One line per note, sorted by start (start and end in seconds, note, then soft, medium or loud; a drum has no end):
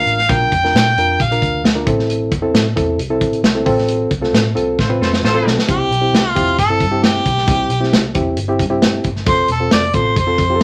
0.00 0.19 D4 medium
0.00 0.19 F4 medium
0.00 0.19 A#4 medium
0.00 0.33 F5 loud
0.06 0.26 A1 loud
0.06 closed hi-hat medium
0.19 snare soft
0.29 0.52 A#1 loud
0.29 0.52 D4 medium
0.29 0.52 F4 medium
0.29 0.52 A#4 medium
0.29 1.24 G5 loud
0.29 kick loud
0.29 closed hi-hat medium
0.52 0.71 F2 medium
0.52 kick medium
0.52 closed hi-hat medium
0.64 0.86 D4 medium
0.64 0.86 F4 medium
0.64 0.86 A#4 medium
0.64 snare soft
0.74 0.94 A#2 loud
0.74 snare loud
0.74 closed hi-hat loud
0.96 1.16 F2 medium
0.96 1.20 D4 medium
0.96 1.20 F4 medium
0.96 1.20 A#4 medium
0.96 closed hi-hat medium
1.20 1.39 A#1 medium
1.20 1.66 F5 medium
1.20 kick medium
1.20 closed hi-hat medium
1.31 1.61 D4 medium
1.31 1.62 F4 medium
1.31 1.62 A#4 medium
1.31 closed hi-hat medium
1.42 1.62 D2 medium
1.42 kick medium
1.42 closed hi-hat medium
1.64 1.84 D2 medium
1.64 snare loud
1.64 closed hi-hat medium
1.75 1.86 D4 medium
1.75 1.86 F4 medium
1.75 1.87 A#4 medium
1.86 2.31 A1 loud
1.86 2.31 C4 medium
1.86 2.31 E4 medium
1.86 2.32 A4 medium
1.86 kick loud
1.86 closed hi-hat medium
1.99 snare soft
2.10 closed hi-hat medium
2.31 2.51 E2 medium
2.31 kick medium
2.31 closed hi-hat medium
2.42 2.65 C4 medium
2.42 2.65 E4 medium
2.42 2.65 A4 medium
2.54 2.73 A2 medium
2.54 snare loud
2.54 closed hi-hat loud
2.76 2.96 E2 medium
2.76 2.99 C4 medium
2.76 2.99 E4 medium
2.76 2.99 A4 medium
2.76 kick loud
2.76 closed hi-hat medium
2.98 3.21 C2 loud
2.98 closed hi-hat medium
3.10 3.40 C4 medium
3.10 3.41 E4 medium
3.10 3.41 A4 loud
3.21 3.41 A1 medium
3.21 kick medium
3.21 closed hi-hat medium
3.33 closed hi-hat medium
3.43 3.63 C2 medium
3.43 snare loud
3.43 closed hi-hat loud
3.55 3.65 C4 medium
3.55 3.66 E4 medium
3.55 3.65 A4 medium
3.66 4.05 A1 loud
3.66 4.11 C4 medium
3.66 4.11 F4 medium
3.66 4.11 A4 medium
3.66 kick medium
3.66 open hi-hat soft
3.78 snare soft
3.88 closed hi-hat medium
4.11 4.30 C2 medium
4.11 kick medium
4.11 closed hi-hat medium
4.22 4.45 C4 medium
4.22 4.45 F4 medium
4.22 4.45 A4 medium
4.22 snare soft
4.33 4.53 A2 medium
4.33 snare loud
4.33 closed hi-hat loud
4.55 4.76 C2 medium
4.55 4.78 C4 medium
4.55 4.79 F4 medium
4.55 4.79 A4 loud
4.55 closed hi-hat medium
4.78 4.98 A1 medium
4.78 4.88 F4 medium
4.78 4.88 A4 medium
4.78 4.88 C5 loud
4.78 kick medium
4.78 snare medium
4.89 5.20 C4 loud
4.89 5.20 F4 medium
4.89 5.20 B4 medium
5.00 5.20 F1 medium
5.00 5.11 F4 medium
5.00 5.11 A4 medium
5.00 5.10 C5 medium
5.00 snare medium
5.13 snare medium
5.23 5.42 A1 medium
5.23 5.55 F4 medium
5.23 5.56 A4 medium
5.23 5.56 C5 loud
5.23 snare medium
5.34 5.57 C4 medium
5.34 5.57 F4 medium
5.34 5.57 A4 medium
5.45 5.55 B1 loud
5.45 snare medium
5.59 snare medium
5.68 5.88 C2 loud
5.68 5.91 C4 medium
5.68 5.91 E4 medium
5.68 5.91 G4 medium
5.68 6.31 G4 loud
5.68 kick loud
5.68 closed hi-hat medium
5.91 6.10 B1 medium
5.91 closed hi-hat medium
6.01 6.24 C4 medium
6.01 6.24 E4 medium
6.01 6.24 G4 medium
6.13 6.32 C2 medium
6.13 snare loud
6.13 closed hi-hat medium
6.31 6.54 F4 loud
6.35 6.55 E2 medium
6.35 6.58 C4 medium
6.35 6.58 E4 medium
6.35 6.58 G4 medium
6.35 kick loud
6.35 closed hi-hat medium
6.58 6.82 G1 medium
6.58 7.05 A4 loud
6.58 kick medium
6.58 closed hi-hat medium
6.70 6.84 C4 medium
6.70 6.84 E4 medium
6.70 6.84 A4 medium
6.80 7.19 G2 medium
6.80 kick medium
6.80 closed hi-hat medium
6.91 7.29 C4 medium
6.91 7.29 E4 medium
6.91 7.29 G4 medium
7.03 8.15 G4 medium
7.03 snare loud
7.03 closed hi-hat medium
7.25 7.45 B1 medium
7.25 kick medium
7.25 closed hi-hat medium
7.38 snare soft
7.47 7.67 C2 loud
7.47 7.70 C4 medium
7.47 7.70 E4 medium
7.47 7.70 G4 medium
7.47 kick loud
7.47 closed hi-hat medium
7.70 7.89 B1 medium
7.70 closed hi-hat medium
7.80 8.03 C4 medium
7.80 8.03 E4 medium
7.80 8.04 G4 medium
7.80 snare soft
7.92 8.12 C2 loud
7.92 snare loud
7.92 closed hi-hat loud
8.14 8.34 E2 medium
8.14 8.37 C4 medium
8.14 8.37 E4 medium
8.14 8.37 G4 medium
8.14 kick loud
8.14 closed hi-hat medium
8.37 8.61 G1 medium
8.37 closed hi-hat medium
8.48 8.63 C4 medium
8.48 8.63 E4 medium
8.48 8.64 G4 loud
8.59 8.98 G2 medium
8.59 kick medium
8.59 closed hi-hat medium
8.70 9.08 C4 medium
8.70 9.08 E4 medium
8.70 9.08 G4 loud
8.82 snare loud
8.82 closed hi-hat loud
9.04 9.26 G1 medium
9.04 kick medium
9.04 closed hi-hat medium
9.16 snare soft
9.26 9.46 F1 loud
9.26 9.49 C4 medium
9.26 9.49 F4 medium
9.26 9.49 A4 medium
9.26 9.48 C5 loud
9.26 kick loud
9.26 closed hi-hat medium
9.48 9.68 E1 medium
9.48 9.71 A4 loud
9.48 closed hi-hat medium
9.60 9.83 C4 medium
9.60 9.83 F4 medium
9.60 9.83 A4 medium
9.71 9.91 F1 medium
9.71 9.96 D5 loud
9.71 snare loud
9.71 closed hi-hat loud
9.93 10.18 A1 medium
9.93 10.16 C4 medium
9.93 10.16 F4 medium
9.93 10.17 A4 medium
9.93 10.16 C5 loud
9.93 kick loud
9.93 closed hi-hat medium
10.16 10.36 F1 loud
10.16 10.58 C5 medium
10.16 kick medium
10.16 closed hi-hat medium
10.27 10.42 C4 medium
10.27 10.42 F4 medium
10.27 10.42 A4 medium
10.38 10.63 F2 loud
10.38 kick medium
10.38 closed hi-hat medium
10.50 10.63 C4 medium
10.50 10.63 F4 medium
10.50 10.55 G4 medium
10.55 10.63 A4 medium